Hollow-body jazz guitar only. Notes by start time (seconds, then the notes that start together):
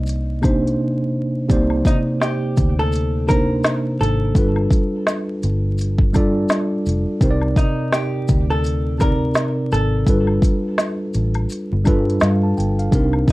Already playing: C5
1.87 D#4
2.22 G4
2.79 A4
3.29 A#4
4.01 A4
7.57 D#4
7.92 G4
8.50 A4
9.01 A#4
9.73 A4